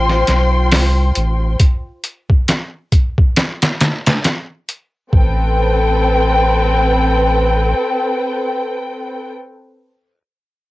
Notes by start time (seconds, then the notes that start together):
Already playing: A1 F4 C5 G5 C6
0.09 snare
0.27 B1, snare, closed hi-hat
0.72 C2, snare, open hi-hat
1.15 A1, closed hi-hat
1.60 kick, closed hi-hat
2.04 closed hi-hat
2.30 kick
2.48 snare, closed hi-hat
2.92 kick, closed hi-hat
3.18 kick
3.36 snare, closed hi-hat
3.62 snare, closed hi-hat
3.81 snare, closed hi-hat
4.06 snare, closed hi-hat
4.24 snare, closed hi-hat
4.69 closed hi-hat
5.13 A1 C4 A4 B4 G5, kick